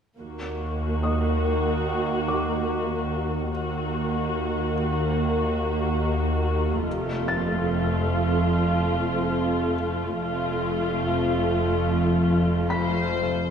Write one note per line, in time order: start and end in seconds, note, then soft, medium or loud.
0.19 3.48 D#2 medium
0.19 3.49 D#2 soft
0.19 3.49 A#3 soft
0.19 3.49 F#4 soft
1.03 3.49 D#5 soft
1.03 3.49 D#6 soft
2.28 4.74 D6 soft
3.53 6.82 D#2 soft
3.53 6.82 D#2 medium
3.53 6.83 D#2 soft
3.53 6.82 A#3 soft
3.53 6.82 F#4 soft
6.86 10.19 F1 soft
6.86 10.19 F2 medium
6.86 10.18 F2 soft
6.86 10.16 A3 soft
6.86 10.19 F4 soft
7.28 9.74 A6 soft
10.19 13.29 F1 soft
10.19 13.29 F2 soft
10.19 13.49 F2 medium
10.19 13.29 A3 soft
10.19 13.29 F4 soft
12.70 13.49 C5 soft
12.70 13.49 B5 soft
12.70 13.49 B6 soft